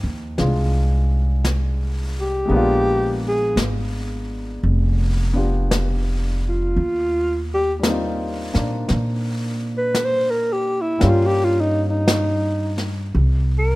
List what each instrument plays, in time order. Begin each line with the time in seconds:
Already playing: grand piano D#3 F3 C4 D#4 G5
0.03 upright bass D#2
0.38 upright bass C2, grand piano G#3 D4 F4, brush sweep, snare
1.45 brush sweep, snare, hi-hat pedal
2.21 alto saxophone G4
2.46 upright bass A#1, grand piano G#3 A#3
2.51 grand piano B3 D4, brush sweep
2.56 grand piano F4
3.28 alto saxophone G#4
3.56 upright bass G#1, brush sweep, snare, hi-hat pedal
4.63 upright bass F1, brush sweep
5.33 grand piano B3 D4 F4 G4
5.71 brush sweep, snare, hi-hat pedal
6.49 alto saxophone F4
6.76 upright bass D#2, brush sweep
7.54 alto saxophone G4
7.79 grand piano G3 A#3, brush sweep, snare, hi-hat pedal
7.85 grand piano C4 D#4
7.90 grand piano F4
8.54 upright bass A#2, grand piano A#3 D4, snare
8.89 upright bass A#2, brush sweep, snare
9.78 alto saxophone B4
9.95 brush sweep, snare, hi-hat pedal
10.05 alto saxophone C5
10.30 alto saxophone A#4
10.53 alto saxophone G4
10.81 alto saxophone E4
10.99 upright bass G2, grand piano G3 A#3 C#4, brush sweep, snare
11.03 grand piano F4 G4
11.09 alto saxophone F4
11.26 alto saxophone G4
11.44 alto saxophone F4
11.60 alto saxophone D#4
11.90 alto saxophone D#4
12.08 brush sweep, snare, hi-hat pedal
12.78 snare
13.14 upright bass C2, brush sweep
13.58 alto saxophone A#4